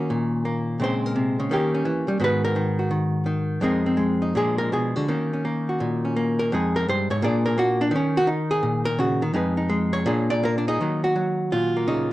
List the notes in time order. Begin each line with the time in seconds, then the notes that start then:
Already playing: D#3 A#3 F#4
0.00 C#4
0.10 A#2
0.45 A#3
0.80 A#2 C#3 G#3 C4
0.84 C5
1.06 A#4
1.16 C3
1.40 C#3
1.51 D#3 A#3 C#4 G4
1.74 C#4
1.85 E3
2.08 G3
2.20 G#2 D#3 B3 F#4
2.24 B4
2.45 A#4
2.56 D#3
2.79 F#4
2.91 D#3
3.26 D#3
3.61 F2 G#3 C4 D#4 A#4
3.86 C4
3.97 G#3
4.22 D#4
4.35 A#2 F3 G#3 D4 G#4
4.58 A#4
4.72 B2 G#4
4.96 D3 F#4
5.08 D#3 A#3 C#4
5.33 C#4
5.45 A#3
5.69 F#4
5.80 A#2
6.05 C#4
6.16 A#3
6.39 A#4
6.52 F2 G#3 D#4 G#4
6.76 A#4
6.88 G2 C5
7.10 G#2 C#5
7.22 A#2 A#3 D4 G#4 D5
7.46 A#4
7.58 A#3 F#4
7.81 D4
7.91 D#3
7.96 C#4
8.17 F#4
8.27 D#4
8.51 G#4
8.63 A#2
8.85 A#4
8.99 C#3 F#4
9.22 D#3
9.34 F2 G#3 D#4 G#4 B4
9.57 D#4
9.69 G#3
9.93 C#5
10.06 A#2 A#3 D4 G#4
10.30 D5
10.43 A#3 A#4
10.58 D4
10.68 D#4 G#4
10.81 D#3 F#3 A#3
11.04 F#4
11.16 F#3
11.52 A#2 F4
11.77 A#3
11.88 C#3 D#4